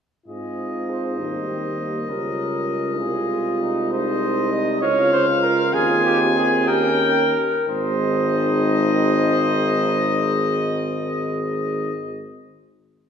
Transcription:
0, 0, Header, 1, 6, 480
1, 0, Start_track
1, 0, Key_signature, -4, "major"
1, 0, Tempo, 609137
1, 218, Time_signature, 6, 3, 24, 8
1, 5016, Tempo, 658617
1, 6456, Tempo, 645161
1, 9993, End_track
2, 0, Start_track
2, 0, Title_t, "Trumpet"
2, 0, Program_c, 0, 56
2, 217, Note_on_c, 0, 75, 42
2, 3065, Note_off_c, 0, 75, 0
2, 3095, Note_on_c, 0, 75, 56
2, 3791, Note_off_c, 0, 75, 0
2, 3804, Note_on_c, 0, 77, 73
2, 4514, Note_on_c, 0, 80, 77
2, 4526, Note_off_c, 0, 77, 0
2, 5237, Note_off_c, 0, 80, 0
2, 5241, Note_on_c, 0, 79, 80
2, 5719, Note_off_c, 0, 79, 0
2, 5980, Note_on_c, 0, 75, 73
2, 9119, Note_off_c, 0, 75, 0
2, 9993, End_track
3, 0, Start_track
3, 0, Title_t, "Flugelhorn"
3, 0, Program_c, 1, 56
3, 218, Note_on_c, 1, 68, 57
3, 708, Note_on_c, 1, 72, 69
3, 720, Note_off_c, 1, 68, 0
3, 1654, Note_on_c, 1, 70, 60
3, 1666, Note_off_c, 1, 72, 0
3, 2361, Note_off_c, 1, 70, 0
3, 2365, Note_on_c, 1, 68, 72
3, 2843, Note_on_c, 1, 63, 72
3, 2855, Note_off_c, 1, 68, 0
3, 3083, Note_on_c, 1, 72, 86
3, 3095, Note_off_c, 1, 63, 0
3, 3558, Note_off_c, 1, 72, 0
3, 3562, Note_on_c, 1, 75, 93
3, 3791, Note_off_c, 1, 75, 0
3, 3796, Note_on_c, 1, 73, 103
3, 4033, Note_off_c, 1, 73, 0
3, 4040, Note_on_c, 1, 72, 93
3, 4148, Note_off_c, 1, 72, 0
3, 4273, Note_on_c, 1, 70, 94
3, 4514, Note_off_c, 1, 70, 0
3, 4519, Note_on_c, 1, 68, 101
3, 4760, Note_off_c, 1, 68, 0
3, 4768, Note_on_c, 1, 67, 99
3, 4879, Note_off_c, 1, 67, 0
3, 5010, Note_on_c, 1, 68, 102
3, 5245, Note_on_c, 1, 70, 105
3, 5256, Note_off_c, 1, 68, 0
3, 5970, Note_off_c, 1, 70, 0
3, 5974, Note_on_c, 1, 72, 88
3, 9113, Note_off_c, 1, 72, 0
3, 9993, End_track
4, 0, Start_track
4, 0, Title_t, "French horn"
4, 0, Program_c, 2, 60
4, 207, Note_on_c, 2, 65, 53
4, 934, Note_on_c, 2, 63, 43
4, 946, Note_off_c, 2, 65, 0
4, 1167, Note_off_c, 2, 63, 0
4, 1172, Note_on_c, 2, 60, 39
4, 1279, Note_off_c, 2, 60, 0
4, 1411, Note_on_c, 2, 58, 41
4, 1637, Note_off_c, 2, 58, 0
4, 1642, Note_on_c, 2, 61, 53
4, 2354, Note_on_c, 2, 65, 69
4, 2366, Note_off_c, 2, 61, 0
4, 3091, Note_on_c, 2, 63, 61
4, 3102, Note_off_c, 2, 65, 0
4, 3800, Note_off_c, 2, 63, 0
4, 3805, Note_on_c, 2, 65, 86
4, 5219, Note_off_c, 2, 65, 0
4, 5244, Note_on_c, 2, 67, 82
4, 5599, Note_off_c, 2, 67, 0
4, 5972, Note_on_c, 2, 63, 78
4, 9110, Note_off_c, 2, 63, 0
4, 9993, End_track
5, 0, Start_track
5, 0, Title_t, "Euphonium"
5, 0, Program_c, 3, 58
5, 214, Note_on_c, 3, 60, 36
5, 931, Note_on_c, 3, 55, 43
5, 943, Note_off_c, 3, 60, 0
5, 2357, Note_off_c, 3, 55, 0
5, 2362, Note_on_c, 3, 56, 49
5, 3775, Note_off_c, 3, 56, 0
5, 3799, Note_on_c, 3, 61, 62
5, 4504, Note_off_c, 3, 61, 0
5, 4518, Note_on_c, 3, 60, 74
5, 5249, Note_on_c, 3, 61, 67
5, 5260, Note_off_c, 3, 60, 0
5, 5733, Note_off_c, 3, 61, 0
5, 5977, Note_on_c, 3, 56, 70
5, 9115, Note_off_c, 3, 56, 0
5, 9993, End_track
6, 0, Start_track
6, 0, Title_t, "Bass trombone"
6, 0, Program_c, 4, 57
6, 217, Note_on_c, 4, 44, 41
6, 938, Note_on_c, 4, 39, 47
6, 950, Note_off_c, 4, 44, 0
6, 1642, Note_off_c, 4, 39, 0
6, 1647, Note_on_c, 4, 37, 50
6, 2366, Note_on_c, 4, 36, 63
6, 2378, Note_off_c, 4, 37, 0
6, 3803, Note_on_c, 4, 37, 78
6, 3815, Note_off_c, 4, 36, 0
6, 4511, Note_off_c, 4, 37, 0
6, 4516, Note_on_c, 4, 39, 79
6, 5705, Note_off_c, 4, 39, 0
6, 5974, Note_on_c, 4, 32, 78
6, 9113, Note_off_c, 4, 32, 0
6, 9993, End_track
0, 0, End_of_file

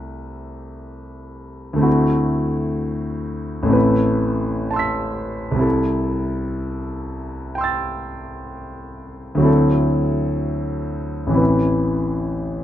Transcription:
0, 0, Header, 1, 2, 480
1, 0, Start_track
1, 0, Tempo, 943396
1, 947, Time_signature, 4, 2, 24, 8
1, 3355, Tempo, 963082
1, 6367, End_track
2, 0, Start_track
2, 0, Title_t, "Grand piano"
2, 0, Program_c, 0, 0
2, 0, Control_c, 0, 64, 127
2, 0, Note_on_c, 0, 36, 42
2, 0, Note_on_c, 0, 57, 31
2, 0, Note_on_c, 0, 60, 35
2, 0, Note_on_c, 0, 64, 34
2, 0, Note_on_c, 0, 67, 34
2, 882, Note_on_c, 0, 38, 41
2, 889, Note_off_c, 0, 57, 0
2, 896, Note_on_c, 0, 57, 42
2, 898, Note_off_c, 0, 36, 0
2, 898, Note_off_c, 0, 60, 0
2, 906, Note_on_c, 0, 60, 38
2, 913, Note_off_c, 0, 64, 0
2, 921, Note_on_c, 0, 64, 39
2, 922, Note_off_c, 0, 67, 0
2, 930, Note_on_c, 0, 66, 37
2, 957, Control_c, 0, 64, 0
2, 1041, Control_c, 0, 64, 127
2, 1845, Note_on_c, 0, 33, 50
2, 1848, Note_off_c, 0, 57, 0
2, 1856, Note_off_c, 0, 38, 0
2, 1856, Note_on_c, 0, 57, 42
2, 1862, Note_off_c, 0, 60, 0
2, 1870, Note_on_c, 0, 60, 40
2, 1872, Note_off_c, 0, 64, 0
2, 1880, Note_off_c, 0, 66, 0
2, 1880, Note_on_c, 0, 64, 41
2, 1895, Note_on_c, 0, 71, 41
2, 1917, Control_c, 0, 64, 0
2, 2001, Control_c, 0, 64, 127
2, 2394, Note_on_c, 0, 81, 38
2, 2409, Note_on_c, 0, 84, 36
2, 2423, Note_on_c, 0, 88, 36
2, 2438, Note_on_c, 0, 95, 36
2, 2806, Note_on_c, 0, 36, 46
2, 2819, Note_on_c, 0, 55, 40
2, 2820, Note_off_c, 0, 33, 0
2, 2823, Note_off_c, 0, 60, 0
2, 2825, Note_off_c, 0, 57, 0
2, 2831, Note_on_c, 0, 60, 41
2, 2837, Note_off_c, 0, 64, 0
2, 2845, Note_off_c, 0, 71, 0
2, 2845, Note_on_c, 0, 64, 43
2, 2852, Note_off_c, 0, 81, 0
2, 2855, Note_on_c, 0, 69, 39
2, 2860, Note_off_c, 0, 84, 0
2, 2867, Note_off_c, 0, 88, 0
2, 2874, Note_off_c, 0, 95, 0
2, 2881, Control_c, 0, 64, 0
2, 2956, Control_c, 0, 64, 127
2, 3832, Note_on_c, 0, 79, 35
2, 3846, Note_on_c, 0, 84, 34
2, 3861, Note_on_c, 0, 88, 35
2, 3875, Note_on_c, 0, 93, 37
2, 4728, Note_on_c, 0, 38, 51
2, 4739, Note_off_c, 0, 36, 0
2, 4741, Note_on_c, 0, 54, 38
2, 4744, Note_off_c, 0, 60, 0
2, 4745, Note_off_c, 0, 55, 0
2, 4752, Note_on_c, 0, 60, 45
2, 4755, Note_off_c, 0, 64, 0
2, 4763, Note_off_c, 0, 69, 0
2, 4763, Note_on_c, 0, 64, 42
2, 4770, Note_off_c, 0, 79, 0
2, 4777, Note_off_c, 0, 84, 0
2, 4777, Note_on_c, 0, 69, 40
2, 4785, Note_off_c, 0, 88, 0
2, 4792, Note_off_c, 0, 93, 0
2, 4799, Control_c, 0, 64, 0
2, 4891, Control_c, 0, 64, 127
2, 5685, Note_on_c, 0, 33, 43
2, 5697, Note_off_c, 0, 38, 0
2, 5698, Note_on_c, 0, 52, 40
2, 5701, Note_off_c, 0, 60, 0
2, 5704, Note_off_c, 0, 54, 0
2, 5708, Note_on_c, 0, 60, 38
2, 5714, Note_off_c, 0, 64, 0
2, 5722, Note_off_c, 0, 69, 0
2, 5722, Note_on_c, 0, 64, 34
2, 5736, Note_on_c, 0, 71, 38
2, 5757, Control_c, 0, 64, 0
2, 5836, Control_c, 0, 64, 127
2, 6367, Note_off_c, 0, 33, 0
2, 6367, Note_off_c, 0, 52, 0
2, 6367, Note_off_c, 0, 60, 0
2, 6367, Note_off_c, 0, 64, 0
2, 6367, Note_off_c, 0, 71, 0
2, 6367, End_track
0, 0, End_of_file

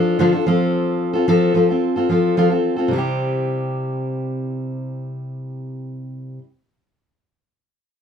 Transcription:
0, 0, Header, 1, 2, 480
1, 0, Start_track
1, 0, Key_signature, 0, "major"
1, 0, Tempo, 547445
1, 644, Time_signature, 4, 2, 24, 8
1, 7031, End_track
2, 0, Start_track
2, 0, Title_t, "Steel-string acoustic guitar"
2, 0, Program_c, 0, 25
2, 0, Note_on_c, 0, 53, 56
2, 0, Note_on_c, 0, 62, 57
2, 0, Note_on_c, 0, 65, 59
2, 0, Note_on_c, 0, 69, 64
2, 159, Note_off_c, 0, 53, 0
2, 166, Note_off_c, 0, 62, 0
2, 166, Note_on_c, 0, 50, 77
2, 167, Note_off_c, 0, 65, 0
2, 169, Note_on_c, 0, 53, 71
2, 174, Note_off_c, 0, 69, 0
2, 176, Note_on_c, 0, 62, 73
2, 177, Note_on_c, 0, 65, 76
2, 185, Note_on_c, 0, 69, 77
2, 274, Note_off_c, 0, 69, 0
2, 285, Note_off_c, 0, 50, 0
2, 285, Note_on_c, 0, 69, 50
2, 287, Note_off_c, 0, 53, 0
2, 287, Note_off_c, 0, 65, 0
2, 290, Note_off_c, 0, 62, 0
2, 298, Note_on_c, 0, 65, 49
2, 308, Note_on_c, 0, 62, 44
2, 404, Note_off_c, 0, 69, 0
2, 407, Note_on_c, 0, 53, 74
2, 408, Note_off_c, 0, 65, 0
2, 414, Note_off_c, 0, 62, 0
2, 417, Note_on_c, 0, 60, 67
2, 418, Note_on_c, 0, 65, 71
2, 423, Note_on_c, 0, 69, 74
2, 984, Note_off_c, 0, 69, 0
2, 995, Note_on_c, 0, 69, 48
2, 997, Note_off_c, 0, 65, 0
2, 1005, Note_off_c, 0, 53, 0
2, 1008, Note_on_c, 0, 65, 45
2, 1015, Note_off_c, 0, 60, 0
2, 1018, Note_on_c, 0, 60, 37
2, 1110, Note_off_c, 0, 60, 0
2, 1118, Note_off_c, 0, 65, 0
2, 1119, Note_off_c, 0, 69, 0
2, 1120, Note_on_c, 0, 53, 68
2, 1121, Note_on_c, 0, 60, 74
2, 1129, Note_on_c, 0, 65, 83
2, 1131, Note_on_c, 0, 69, 90
2, 1341, Note_off_c, 0, 53, 0
2, 1350, Note_off_c, 0, 60, 0
2, 1352, Note_on_c, 0, 53, 59
2, 1358, Note_off_c, 0, 65, 0
2, 1360, Note_on_c, 0, 60, 54
2, 1367, Note_off_c, 0, 69, 0
2, 1369, Note_on_c, 0, 65, 56
2, 1377, Note_on_c, 0, 69, 59
2, 1469, Note_off_c, 0, 69, 0
2, 1477, Note_off_c, 0, 53, 0
2, 1479, Note_on_c, 0, 69, 44
2, 1481, Note_off_c, 0, 65, 0
2, 1482, Note_off_c, 0, 60, 0
2, 1492, Note_on_c, 0, 65, 41
2, 1503, Note_on_c, 0, 60, 38
2, 1707, Note_off_c, 0, 69, 0
2, 1716, Note_off_c, 0, 65, 0
2, 1718, Note_on_c, 0, 69, 46
2, 1724, Note_off_c, 0, 60, 0
2, 1727, Note_on_c, 0, 65, 44
2, 1734, Note_on_c, 0, 60, 38
2, 1833, Note_off_c, 0, 60, 0
2, 1834, Note_on_c, 0, 53, 54
2, 1840, Note_off_c, 0, 65, 0
2, 1841, Note_off_c, 0, 69, 0
2, 1843, Note_on_c, 0, 60, 54
2, 1851, Note_on_c, 0, 65, 59
2, 1860, Note_on_c, 0, 69, 63
2, 2068, Note_off_c, 0, 53, 0
2, 2074, Note_off_c, 0, 60, 0
2, 2079, Note_on_c, 0, 53, 70
2, 2080, Note_off_c, 0, 65, 0
2, 2082, Note_off_c, 0, 69, 0
2, 2085, Note_on_c, 0, 60, 68
2, 2090, Note_on_c, 0, 65, 72
2, 2093, Note_on_c, 0, 69, 80
2, 2180, Note_off_c, 0, 69, 0
2, 2190, Note_on_c, 0, 69, 49
2, 2193, Note_off_c, 0, 65, 0
2, 2201, Note_off_c, 0, 53, 0
2, 2202, Note_off_c, 0, 60, 0
2, 2203, Note_on_c, 0, 65, 43
2, 2212, Note_on_c, 0, 60, 40
2, 2413, Note_off_c, 0, 69, 0
2, 2424, Note_on_c, 0, 69, 44
2, 2428, Note_off_c, 0, 65, 0
2, 2435, Note_off_c, 0, 60, 0
2, 2438, Note_on_c, 0, 65, 43
2, 2445, Note_on_c, 0, 60, 41
2, 2527, Note_on_c, 0, 48, 72
2, 2553, Note_off_c, 0, 69, 0
2, 2553, Note_on_c, 0, 55, 60
2, 2560, Note_off_c, 0, 60, 0
2, 2561, Note_off_c, 0, 65, 0
2, 2570, Note_on_c, 0, 60, 71
2, 2592, Note_on_c, 0, 64, 65
2, 2613, Note_on_c, 0, 67, 68
2, 5595, Note_off_c, 0, 48, 0
2, 5622, Note_off_c, 0, 55, 0
2, 5639, Note_off_c, 0, 60, 0
2, 5661, Note_off_c, 0, 64, 0
2, 5681, Note_off_c, 0, 67, 0
2, 7031, End_track
0, 0, End_of_file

